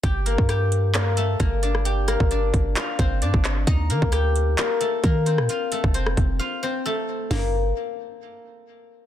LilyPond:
<<
  \new Staff \with { instrumentName = "Guzheng" } { \time 4/4 \key g \minor \tempo 4 = 132 <g' g''>8 <bes bes'>8 <g' g''>4 <bes bes'>8 <a a'>8 <bes bes'>8 <d' d''>8 | <g' g''>8 <bes bes'>8 <d' d''>4 <f' f''>8 <c' c''>8 <d' d''>4 | <ees' ees''>8 <bes bes'>8 <g' g''>4 <bes bes'>8 <a a'>8 <bes bes'>8 <c' c''>8 | <f' f''>8 <a a'>8 <c' c''>4 <f' f''>8 <c' c''>8 <a a'>4 |
bes8 r2. r8 | }
  \new Staff \with { instrumentName = "808-style bass" } { \clef bass \time 4/4 \key g \minor g,,8. g,2~ g,16 g,,4~ | g,,8. g,,8. g,,8 r8 g,,8 g,16 g,,8. | ees,8 ees16 d,4~ d,16 r4 ees8. bes,16 | r8. f,,8. f,,8 r2 |
g,,4 r2. | }
  \new DrumStaff \with { instrumentName = "Drums" } \drummode { \time 4/4 <hh bd>8 hh16 bd16 <hh ss>8 hh8 <hc hh>8 hh8 <hh bd>8 hh16 ss16 | hh8 <hh ss>16 bd16 hh8 <hh bd>8 <hc hh>8 <hh bd>8 hh16 bd16 <hc hh>8 | <hh bd>8 hh16 bd16 <hh ss>8 hh8 <hc hh>8 hh8 <hh bd>8 hh16 ss16 | hh8 hh16 bd16 hh16 ss16 <hh bd>8 r4 r4 |
<hho sn tomfh>4 r4 r4 r4 | }
>>